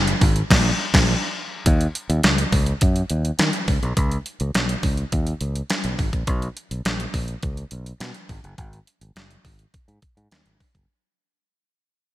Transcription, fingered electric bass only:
0.00 0.12 F#1 medium
0.21 0.41 G#1 loud
0.51 0.70 A#1 loud
0.94 1.14 A#1 loud
1.66 1.86 D#2 loud
2.10 2.19 D#2 loud
2.24 2.44 C#2 medium
2.52 2.72 C#2 loud
2.82 3.01 F#2 loud
3.10 3.30 D#2 medium
3.39 3.49 D#3 loud
3.68 3.78 C#2 medium
3.83 3.92 B1 medium
3.97 4.16 C#2 loud
4.41 4.50 C#2 loud
4.55 4.74 B1 medium
4.83 5.03 C#2 loud
5.13 5.32 D#2 loud
5.41 5.61 C#2 medium
5.85 5.94 B1 loud
5.99 6.09 G#1 loud
6.13 6.23 A#1 medium
6.27 6.47 B1 loud
6.71 6.81 B1 medium
6.85 7.05 A#1 medium
7.14 7.34 A#1 loud
7.43 7.63 C#2 loud
7.72 7.91 B1 medium
8.00 8.10 B2 loud
8.29 8.39 G#1 loud
8.44 8.54 F#1 medium
8.58 8.78 G#1 loud
9.01 9.11 G#1 loud
9.16 9.35 F#1 medium
9.45 9.64 G#1 loud
9.88 9.98 G#2 medium
10.17 10.27 G#2 loud
10.32 10.41 D#2 medium
10.46 10.56 G#1 medium
10.75 10.85 F#1 loud

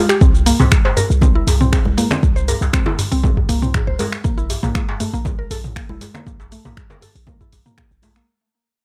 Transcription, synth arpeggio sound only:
0.09 0.21 G4 medium
0.21 0.33 C4 medium
0.46 0.58 A#3 loud
0.60 0.71 C4 medium
0.85 0.91 C5 medium
0.97 1.04 A#4 medium
1.22 1.34 C4 medium
1.35 1.46 E4 medium
1.61 1.72 C4 medium
1.73 1.85 C4 medium
1.98 2.10 A#3 loud
2.11 2.22 C4 medium
2.36 2.43 C5 medium
2.48 2.55 A#4 medium
2.73 2.85 C4 medium
2.86 2.97 E4 medium
3.12 3.22 C4 medium
3.23 3.36 C4 medium
3.49 3.61 A#3 loud
3.62 3.74 C4 medium
3.87 3.94 C5 medium
3.99 4.07 A#4 medium
4.24 4.36 A#3 medium
4.38 4.49 E4 medium
4.63 4.74 A#3 medium
4.75 4.87 A#3 medium
5.00 5.12 A3 loud
5.14 5.25 A#3 medium
5.39 5.45 A#4 medium
5.51 5.58 A4 medium
5.76 5.88 A#3 medium
5.89 6.00 E4 medium
6.15 6.25 A#3 medium
6.27 6.39 A#3 medium
6.52 6.64 A3 loud
6.65 6.76 A#3 medium
6.91 6.97 A#4 medium
7.02 7.09 A4 medium
7.28 7.39 A#3 medium
7.41 7.52 E4 medium
7.66 7.77 A#3 medium
7.78 7.90 A#3 medium
8.03 8.15 A3 loud
8.16 8.28 A#3 medium

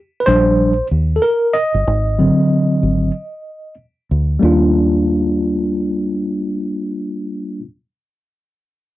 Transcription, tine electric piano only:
0.20 0.27 B4 medium
0.26 0.72 F3 medium
0.26 0.72 G3 soft
0.26 0.73 D4 medium
0.26 0.87 C5 loud
1.16 1.23 A4 medium
1.22 1.56 A#4 medium
1.54 3.74 D#5 loud
2.19 3.11 D3 medium
2.19 3.11 F#3 soft
2.19 3.11 C4 medium
4.39 7.58 G3 medium
4.39 7.60 A#3 medium
4.39 7.62 D4 medium
4.45 7.64 F4 medium

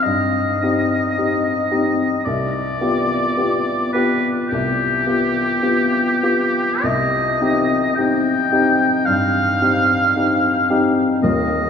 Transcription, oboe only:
0.03 2.24 D#5 medium
2.25 3.90 D5 medium
3.93 4.29 B4 medium
4.48 6.84 G4 medium
6.82 7.94 D#5 medium
7.95 9.07 G5 medium
9.06 10.98 F5 loud
11.23 11.70 D#5 medium

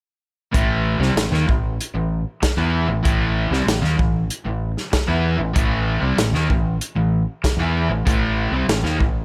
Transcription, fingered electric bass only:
0.54 0.98 A1 medium
0.99 1.14 C2 medium
1.15 1.30 A1 medium
1.31 1.46 D#2 medium
1.48 1.77 A1 medium
1.94 2.23 A1 medium
2.42 muted fingered electric bass stroke soft
2.57 2.86 E2 medium
2.88 3.03 A1 medium
3.05 3.49 A1 medium
3.51 3.66 C2 medium
3.66 3.81 A1 medium
3.82 3.97 D#2 medium
3.99 4.28 A1 medium
4.45 4.75 A1 medium
4.93 muted fingered electric bass stroke soft
5.08 5.37 E2 medium
5.39 5.54 A1 medium
5.56 5.99 A1 medium
6.02 6.16 C2 medium
6.17 6.32 A1 medium
6.32 6.48 D#2 medium
6.50 6.79 A1 medium
6.96 7.25 A1 medium
7.44 muted fingered electric bass stroke soft
7.57 7.87 E2 medium
7.89 8.04 A1 medium
8.07 8.50 A1 medium
8.51 8.67 C2 loud
8.67 8.82 A1 medium
8.83 8.98 D#2 loud
9.00 9.25 A1 medium

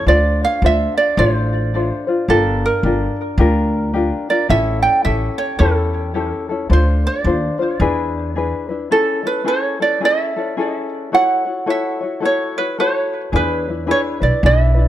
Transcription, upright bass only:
0.07 0.43 D2 medium
0.62 0.84 D2 medium
1.17 1.89 A1 loud
2.28 2.64 G1 medium
2.83 3.06 G1 medium
3.38 4.10 D2 loud
4.50 4.85 A1 medium
5.05 5.27 A1 medium
5.60 6.31 E2 loud
6.70 7.06 D2 medium
7.24 7.47 D#2 loud
7.80 8.52 E2 loud
13.33 13.91 E2 medium
14.22 14.29 B1 medium
14.43 14.88 B1 loud

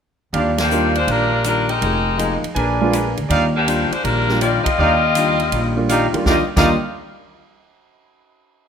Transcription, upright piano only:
0.71 0.93 G3 soft
0.71 0.93 A#3 soft
0.71 0.93 D4 soft
0.71 0.93 F4 medium
2.81 2.92 G#3 medium
2.81 2.92 B3 medium
2.81 2.92 D4 medium
2.81 2.92 F4 medium
4.29 4.40 G3 medium
4.29 4.40 A#3 medium
4.29 4.40 D4 medium
4.29 4.41 F4 medium
5.76 5.88 G3 medium
5.76 5.88 A#3 medium
5.76 5.88 D4 medium
5.76 5.88 F4 medium
6.13 6.25 D#2 medium
6.13 6.23 G3 medium
6.13 6.24 A#3 medium
6.13 6.24 D4 medium
6.13 6.25 F4 medium
6.25 6.40 G3 medium
6.25 6.41 A#3 medium
6.25 6.41 D4 medium
6.25 6.41 F4 medium
6.57 6.73 G3 medium
6.57 6.73 A#3 medium
6.57 6.73 D4 medium
6.57 6.73 F4 medium

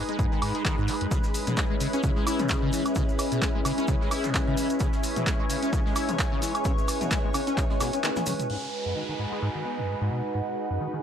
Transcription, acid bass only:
0.09 0.17 G#3 loud
0.19 0.26 G#2 loud
0.32 0.40 D#3 medium
0.42 0.53 G#2 medium
0.55 0.63 G#3 medium
0.65 0.76 D#3 loud
0.78 0.90 G#2 loud
0.88 0.95 G#3 loud
1.01 1.07 F#2 medium
1.11 1.18 C#3 medium
1.47 1.56 B2 medium
1.57 1.64 G#3 medium
1.70 1.76 G#3 medium
1.80 1.88 C#3 medium
1.93 2.02 C#4 loud
2.03 2.11 C#3 loud
2.16 2.25 G#3 medium
2.27 2.41 E4 medium
2.39 2.51 B2 medium
2.50 2.57 C#3 medium
2.62 2.71 C#3 loud
2.73 2.83 E3 medium
2.96 3.03 C#3 medium
3.32 3.40 B2 medium
3.42 3.49 G#3 medium
3.55 3.60 G#3 medium
3.65 3.72 C#3 medium
3.78 3.86 C#4 loud
3.88 3.95 C#3 loud
4.01 4.09 G#3 medium
4.11 4.26 E4 medium
4.24 4.36 B2 medium
4.34 4.41 C#3 medium
4.47 4.56 C#3 loud
4.57 4.68 E3 medium
4.80 4.88 C#3 medium
5.16 5.25 B2 medium
5.27 5.34 G#3 medium
5.40 5.45 G#3 medium
5.50 5.57 C#3 medium
5.63 5.71 C#4 loud
5.73 5.80 C#3 loud
5.86 5.94 G#3 medium
5.96 6.10 E4 medium
6.09 6.20 B2 medium
6.19 6.26 C#3 medium
6.32 6.40 C#3 loud
6.42 6.53 E3 medium
6.65 6.72 C#3 medium
7.01 7.09 B2 medium
7.11 7.18 G#3 medium
7.24 7.30 G#3 medium
7.34 7.41 C#3 medium
7.47 7.56 C#4 loud
7.57 7.64 C#3 loud
7.70 7.79 G#3 medium
7.80 7.91 B2 loud
7.93 7.99 C#4 medium
8.04 8.11 D#3 loud
8.16 8.20 C#3 medium
8.27 8.34 C#3 loud
8.50 8.57 G#2 medium
8.86 8.94 F#2 medium
8.96 9.03 D#3 medium
9.09 9.14 D#3 medium
9.19 9.26 G#2 medium
9.32 9.40 G#3 loud
9.42 9.49 G#2 loud
9.55 9.63 D#3 medium
9.65 9.80 B3 medium
9.78 9.90 F#2 medium
9.88 9.95 G#2 medium
10.01 10.09 G#2 loud
10.11 10.22 B2 medium
10.34 10.41 G#2 medium
10.70 10.79 F#2 medium
10.81 10.88 D#3 medium
10.93 10.99 D#3 medium

